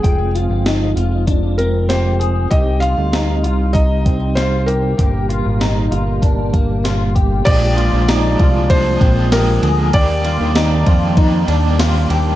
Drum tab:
CC |--------|--------|--------|x-------|
RD |--------|--------|--------|xxxxxxxx|
HH |xxxxxxxx|xxxxxxxx|xxxxxxxx|--------|
TB |--------|--------|--------|--x---x-|
SD |--o---o-|--o---o-|--o---o-|--o---o-|
BD |o---o---|o---oo--|o---oo-o|o--ooo--|

CC |--------|
RD |xxxxxxxx|
HH |--------|
TB |--x---x-|
SD |--o---o-|
BD |o--oo---|